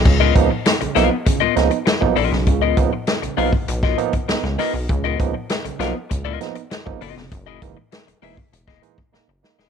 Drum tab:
CC |x---------------|----------------|----------------|----------------|
HH |--x-xxx-x-xxx-o-|x-x-xxo-x-xxx-o-|x-x-xxx-x-xxx-o-|x-x-xxo-x-x-----|
SD |----o-o---o-o--o|----o----o--ooo-|----o-o---o-o--o|----o----o--o-oo|
BD |o-o-----o----o--|o-o----o-o-o----|o-o-----o----o--|o-o----o-o-o----|